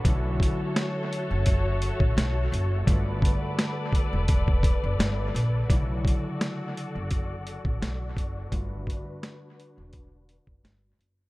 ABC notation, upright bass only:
X:1
M:4/4
L:1/16
Q:"Swing 16ths" 1/4=85
K:Bm
V:1 name="Upright bass" clef=bass
B,,,3 z4 F,,,4 A,,, B,,,2 F,,,2 | G,,,3 z4 E,,,4 F,,, G,,,2 ^A,,,2 | B,,,3 z4 F,,,4 A,,, B,,,2 F,,,2 | G,,,3 z4 E,,,4 F,,, G,,,2 F,,,2 |]